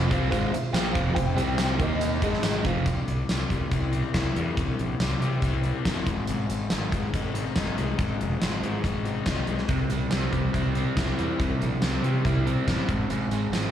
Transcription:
Already playing: F2 F3 C4 F4 C5
0.11 C2 C3 G3 C4 F4 C5 F5, kick, closed hi-hat
0.29 G#1 G#2 F4 C5 F5, kick, closed hi-hat
0.34 D#3 G#3
0.51 F4 C5 E5, muted fingered electric bass stroke, muted overdriven electric guitar stroke, closed hi-hat
0.71 A#1 A#2 F4 C5 G5, snare, closed hi-hat, tambourine
0.76 F3 A#3
0.91 F4 C5 F5
0.95 F1 F2 C3 F3, kick, closed hi-hat
1.13 F1 F4 C5 G5, kick, closed hi-hat
1.18 F2 C3
1.36 C2 C3 G3 C4 G4 C5 G5, closed hi-hat
1.40 C4
1.58 snare, closed hi-hat, tambourine
1.76 D#2 D#3 D#4 A#4 D#5, kick, closed hi-hat
1.80 A#3 D#4 A#4 D#5
2.01 closed hi-hat
2.19 G#1 G#2 D#4 G#4 D#5, kick, closed hi-hat
2.24 D#3 G#3 D#5
2.34 snare
2.43 snare, closed hi-hat, tambourine
2.64 F1 F2 C3 F3 F4 C5 F5, kick, closed hi-hat
2.86 C2 C3, kick, closed hi-hat
3.08 C2, closed hi-hat
3.29 C2 C3, snare, closed hi-hat, tambourine
3.50 C2 G3, kick, closed hi-hat
3.71 C2 E4, kick, closed hi-hat
3.92 C4, closed hi-hat
4.14 C2 E4, kick, snare, closed hi-hat, tambourine
4.36 E2 G3, closed hi-hat
4.57 C2 C3, kick, closed hi-hat
4.79 A#1, closed hi-hat
5.00 C2 C3, snare, closed hi-hat, tambourine
5.20 C3 G3, closed hi-hat
5.42 C2 E4, kick, closed hi-hat
5.63 C4, closed hi-hat
5.85 G1 E4, kick, snare, closed hi-hat, tambourine
6.07 G#1 G#2, kick, closed hi-hat
6.27 G#1 G#2, closed hi-hat
6.50 G#1, closed hi-hat
6.70 G#1 D#3, snare, closed hi-hat, tambourine
6.92 G#1 G#3, kick, closed hi-hat
7.14 G#1 D#4, kick, closed hi-hat
7.34 C4, closed hi-hat
7.56 G#1 D#4, kick, snare, closed hi-hat, tambourine
7.76 C2 G#3, closed hi-hat
7.99 G#1 G#2, kick, closed hi-hat
8.21 F1, closed hi-hat
8.40 G#1 D#3, snare, closed hi-hat, tambourine
8.63 G#2 G#3, closed hi-hat
8.84 G#1 D#4, kick, closed hi-hat
9.05 C4, closed hi-hat
9.26 C2 D#4, kick, snare, closed hi-hat, tambourine
9.47 B1 G#3, closed hi-hat
9.58 snare
9.69 C2 C3, kick, closed hi-hat
9.90 C2 G3, closed hi-hat
10.11 C2 C3 C4, snare, closed hi-hat, tambourine
10.33 C2 G3, kick, closed hi-hat
10.54 C2 E4, kick, closed hi-hat
10.75 C4, closed hi-hat
10.97 C2 G3 E4, kick, snare, closed hi-hat, tambourine
11.18 E2 G3 C4, closed hi-hat
11.39 C2 C3, kick, closed hi-hat
11.61 A#1 G3, closed hi-hat
11.82 C2 C3 C4, snare, closed hi-hat, tambourine
12.03 C3 G3, closed hi-hat
12.25 C2 E4, kick, closed hi-hat
12.47 C4, closed hi-hat
12.66 A1 G3 E4, kick, snare, closed hi-hat, tambourine
12.88 G#1 G#2, kick, closed hi-hat
13.09 G#1 G#2, closed hi-hat
13.31 G#1 G#3, closed hi-hat
13.52 G#1 D#3 C4, snare, closed hi-hat, tambourine

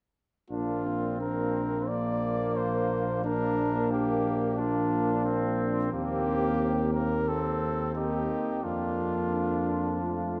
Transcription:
0.50 A#1 A#3 D4 F4
0.85 C4
1.20 A#3 D4 A#4
1.88 A#3 D4 D5
2.56 C5
3.24 A#3 D4 A#4
3.91 A#3 G4
4.57 A#3 D4 F4
5.25 C4
5.92 D#2 A#3 C4 G4
6.94 A#4
7.27 C4 A4
7.95 A#3 C4 D#4 G4
8.63 F2 A#3 D4 F4
9.34 D4
10.02 A3 F4

